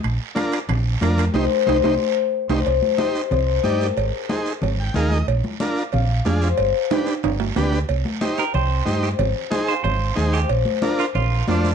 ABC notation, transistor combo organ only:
X:1
M:4/4
L:1/8
Q:1/4=184
K:Cm
V:1 name="Transistor combo organ"
z2 [DFB] z3 [DFB] z | [EGc] z [EGc] [EGc] z3 [EGc] | z2 [EGc] z3 [EGd] z | z2 [EAc] z2 g [EABf] e |
z2 [DFB] z3 [DFA] z | z2 [DG=B] z3 [DGB] z | z2 [EGc] z3 [EGc] z | z2 [EAc] z3 [EAc] z |
z2 [DFB] z3 [DFc] z |]